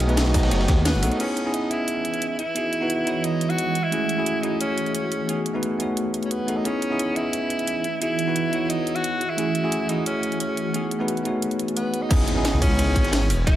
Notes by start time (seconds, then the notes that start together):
Already playing: B1 A3 B3 D#4 F#4 G#4
0.00 closed hi-hat, ride
0.08 A3 B3 D#4 F#4 B4, closed hi-hat
0.17 snare, closed hi-hat, ride
0.26 B1, snare
0.32 A3 B3 D#4 F#4, kick, snare, open hi-hat, ride
0.37 C#5
0.43 snare, ride
0.51 F#1, snare, closed hi-hat, ride
0.61 snare, ride
0.68 D#2, kick, snare, closed hi-hat, ride
0.85 B3, snare, closed hi-hat
0.94 F#1
1.02 B1 A3 B3 D#4 F#4 A4, open hi-hat, ride
1.11 D#4, closed hi-hat
1.19 E3 B3 C#4 D#4 E4 G#4 D#5, closed hi-hat, crash
1.37 closed hi-hat
1.44 B3 C#4 D#4 E4 G#4
1.54 D#4, closed hi-hat
1.69 B3 C#4 E4 D#5, closed hi-hat
1.74 G#4
1.88 closed hi-hat
2.05 closed hi-hat
2.14 closed hi-hat
2.22 closed hi-hat
2.38 E4 F#4, closed hi-hat
2.55 B3 D#4 E4 F#4 G#4, closed hi-hat
2.73 closed hi-hat
2.81 B3 D#4 E4 F#4 B4
2.90 closed hi-hat
3.05 B3 D#4 E4 F#4, closed hi-hat
3.09 C#5
3.24 D#4, closed hi-hat
3.41 closed hi-hat
3.50 F#4, closed hi-hat
3.58 closed hi-hat
3.75 A3 G#4, closed hi-hat
3.83 E4
3.91 A3 C#4 E4 F#4 G#4, closed hi-hat
4.09 closed hi-hat
4.17 A3 C#4 E4 F#4 G#4
4.26 closed hi-hat
4.41 A3 C#4 D#4 E4 F#4, closed hi-hat
4.46 G#4
4.61 C#4, closed hi-hat
4.78 closed hi-hat
4.86 closed hi-hat
4.95 C#4, closed hi-hat
5.12 closed hi-hat
5.27 A3 B3 D#4 F#4 G#4 B4, closed hi-hat
5.46 closed hi-hat
5.53 A3 B3 D#4 F#4 B4
5.63 closed hi-hat
5.78 A3 B3 D#4 F#4, closed hi-hat
5.82 C#5
5.97 closed hi-hat
6.14 closed hi-hat
6.23 C#4, closed hi-hat
6.31 B3, closed hi-hat
6.47 A3 B3 D#4 F#4 A4, closed hi-hat
6.56 D#4
6.64 E3 B3 C#4 D#4 E4 G#4 D#5, closed hi-hat
6.82 closed hi-hat
6.90 B3 C#4 D#4 E4 G#4
6.99 closed hi-hat
7.14 B3 C#4 E4 D#5, closed hi-hat
7.19 G#4
7.33 closed hi-hat
7.50 closed hi-hat
7.59 closed hi-hat
7.67 closed hi-hat
7.84 F#4 G#4, closed hi-hat
8.01 B3 D#4 E4 F#4 G#4, closed hi-hat
8.19 closed hi-hat
8.26 B3 D#4 E4 F#4 B4
8.36 closed hi-hat
8.51 B3 D#4 E4 F#4, closed hi-hat
8.55 C#5
8.70 D#4, closed hi-hat
8.87 closed hi-hat
8.96 F#4, closed hi-hat
9.04 closed hi-hat
9.21 A3, closed hi-hat
9.30 E4
9.37 A3 C#4 E4 F#4 G#4, closed hi-hat
9.55 closed hi-hat
9.63 A3 C#4 E4 F#4 G#4
9.72 closed hi-hat
9.87 A3 C#4 D#4 E4 F#4, closed hi-hat
9.92 G#4
10.06 C#4, closed hi-hat
10.23 closed hi-hat
10.32 closed hi-hat
10.40 C#4, closed hi-hat
10.57 closed hi-hat
10.73 A3 B3 D#4 F#4 G#4, closed hi-hat
10.91 closed hi-hat
10.99 A3 B3 D#4 F#4 B4
11.08 closed hi-hat
11.17 closed hi-hat
11.23 A3 B3 D#4 F#4, closed hi-hat
11.28 C#5
11.42 closed hi-hat
11.51 closed hi-hat
11.59 closed hi-hat
11.68 closed hi-hat
11.76 B3, closed hi-hat
11.94 closed hi-hat
12.02 D#4
12.09 B3 C#4 D#4 E4 G#4 D#6, kick, closed hi-hat, crash, ride, impact
12.20 snare
12.28 closed hi-hat, ride
12.35 B3 C#4 D#4 E4 G#4
12.44 snare, closed hi-hat, ride
12.53 C#2
12.59 B3 C#4 D#4 E4, kick, open hi-hat
12.64 G#4
12.71 ride
12.79 closed hi-hat, ride
12.96 G#1, kick, closed hi-hat, ride
13.04 snare, closed hi-hat
13.12 snare, closed hi-hat, ride
13.30 E1, open hi-hat, ride
13.46 B3 D#4 E4 F#4 G#4, kick, closed hi-hat, ride